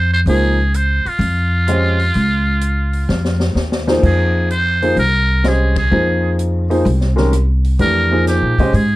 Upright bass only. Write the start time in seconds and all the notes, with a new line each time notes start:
Already playing: F2
0.26 C#2
1.05 muted upright bass stroke
1.19 F2
2.15 C#2
3.09 F2
3.55 D#2
4.03 F2
4.97 C2
5.92 F2
6.85 C2
7.79 F2
8.42 A#2
8.58 C3
8.73 G#2